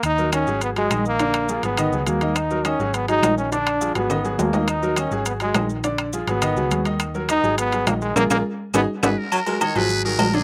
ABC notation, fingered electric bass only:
X:1
M:4/4
L:1/8
Q:1/4=207
K:Abdor
V:1 name="Fingered electric bass" clef=bass
E,,3 A,,,3 B,,,2- | B,,,3 A,,,2 D,, E,,2- | E,,3 A,,,3 B,,,2- | B,,,3 A,,,3 E,,2- |
E,,3 A,,,3 B,,,2- | B,,,3 A,,,2 D,, E,,2- | E,,3 A,,,3 B,,,2 | B,,, B,,, z2 A,,, z A,,, z |
z3 A,,,3 B,,,2 |]